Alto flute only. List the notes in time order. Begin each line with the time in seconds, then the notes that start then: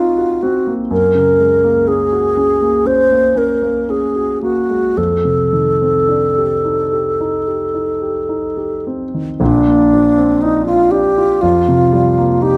Already playing: F4
0.42 F#4
0.92 A#4
1.88 G#4
2.87 C5
3.38 A#4
3.90 G#4
4.43 F#4
4.97 A4
9.40 D4
10.42 D#4
10.66 F4
10.91 G4
11.41 F4
12.42 G4